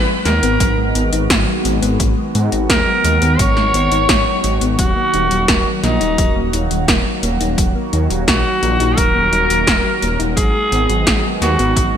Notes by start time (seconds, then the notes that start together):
Already playing: D#3 G#3 B3 F#4 B4
0.09 F#3
0.25 D#2 G#3 A#4, snare, closed hi-hat
0.43 G#1 B3, closed hi-hat
0.60 G#1 F#3, kick, closed hi-hat
0.78 G#1 G#3
0.95 G#1 B3, closed hi-hat
1.13 G#1 D#4, closed hi-hat
1.30 G#1 F#4, kick, snare, closed hi-hat
1.48 F#3
1.65 G#1 G#3, closed hi-hat
1.83 G#1 B3, closed hi-hat
2.00 G#1 F#3, kick, closed hi-hat
2.17 G#3
2.35 G#2 B3, closed hi-hat
2.52 G#1 D#4, closed hi-hat
2.70 D#2 F#4 A#4, kick, snare, closed hi-hat
2.87 F#3
3.04 D#2 G#3, closed hi-hat
3.22 D#2 B3, closed hi-hat
3.39 G#1 F#3 C#5, kick, closed hi-hat
3.57 G#1 G#3, snare
3.74 G#1 B3, closed hi-hat
3.92 G#1 D#4, closed hi-hat
4.09 G#1 F#4, kick, snare, closed hi-hat
4.26 F#3
4.44 G#1 G#3, closed hi-hat
4.61 G#1 B3, closed hi-hat
4.79 D#1 F#3 A#3 F#4, kick, closed hi-hat
4.96 A#3
5.14 D#1 D#4, closed hi-hat
5.31 D#1 F#3, closed hi-hat
5.48 D#1 A#4, kick, snare, closed hi-hat
5.66 F#3
5.83 A#1 A#3 D#4, snare, closed hi-hat
6.01 D#1 D#4, closed hi-hat
6.18 D#1 F#3, kick, closed hi-hat
6.36 D#1 A#3
6.53 D#1 D#4, closed hi-hat
6.71 D#1 F#3, closed hi-hat
6.88 D#1 A#4, kick, snare, closed hi-hat
7.06 F#3
7.23 D#1 A#3, closed hi-hat
7.41 D#1 D#4, closed hi-hat
7.58 D#1 F#3, kick, closed hi-hat
7.75 A#3
7.93 D#2 D#4, closed hi-hat
8.10 D#1 F#3, closed hi-hat
8.28 A#1 F#4 A#4, kick, snare, closed hi-hat
8.45 F#3
8.63 A#1 A#3, closed hi-hat
8.80 A#1 D#4, closed hi-hat
8.97 D#1 F#3 A#4, kick, closed hi-hat
9.15 D#1 A#3
9.32 D#1 D#4, closed hi-hat
9.50 D#1 F#3, closed hi-hat
9.67 D#1 A#4, kick, snare, closed hi-hat
9.85 F#3
10.02 D#1 A#3, closed hi-hat
10.20 D#1 D#4, closed hi-hat
10.37 G#1 D#3 F#3 G#3 B3 G#4, kick, closed hi-hat
10.54 G#3
10.72 G#1 B3, closed hi-hat
10.89 G#1 F#3, closed hi-hat
11.07 G#1 F#4, kick, snare, closed hi-hat
11.24 F#3
11.41 D#2 G#3 F#4, snare, closed hi-hat
11.59 G#1 B3, closed hi-hat
11.76 G#1 F#3, kick, closed hi-hat